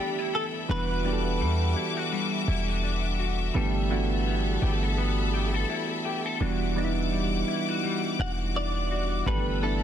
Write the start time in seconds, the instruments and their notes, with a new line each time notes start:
Already playing: synth keys E3 A3 B3 D4 G4, clean electric guitar G3 B3 G4 A4, string section A4 E5 G5 B5, downlifter
0.00 clean electric guitar D4
0.19 clean electric guitar E4
0.34 clean electric guitar A4
0.68 808-style bass E1, synth keys E3 G3 B3 D4 F#4, clean electric guitar E3 F#4 B4, string section G3 F#5 D6
1.04 synth keys E3 G3 B3 D4 G4, clean electric guitar D4
1.13 synth keys A4
1.41 808-style bass E2, clean electric guitar G3
1.76 clean electric guitar E4
1.97 clean electric guitar F#4
2.12 clean electric guitar G3
2.48 808-style bass E1, clean electric guitar E4
2.68 clean electric guitar F#4
2.83 clean electric guitar D4
3.19 clean electric guitar F#4
3.54 808-style bass G1, synth keys E3 A3 B3 D4 G4, clean electric guitar G3 A4, string section A4 A5 B5
3.90 synth keys E3 A3 B3 D4 F#4, clean electric guitar E4
4.26 clean electric guitar B3
4.62 808-style bass G1, clean electric guitar G4
4.83 clean electric guitar A4
4.98 clean electric guitar B3
5.34 clean electric guitar G4
5.54 clean electric guitar A4
5.69 clean electric guitar E4
6.05 clean electric guitar G4
6.26 clean electric guitar A4
6.40 808-style bass E1, synth keys E3 G3 B3 D4 F#4, clean electric guitar E3 F#4, string section G3 F#5 D6
6.76 synth keys E3 G3 B3 D4 D#4, clean electric guitar D4
6.84 synth keys E4
7.12 clean electric guitar G3
7.48 clean electric guitar E4
7.69 clean electric guitar F#4
7.84 clean electric guitar G3
8.19 808-style bass E1, clean electric guitar F#4 F#5
8.55 clean electric guitar D4 D5
8.91 clean electric guitar F#4
9.26 808-style bass G1, synth keys E3 A3 B3 D4 G4, clean electric guitar G3 A4 B4, string section A4 G5 B5, kick
9.61 synth keys E3 A3 B3 D4 E4, clean electric guitar D4 A4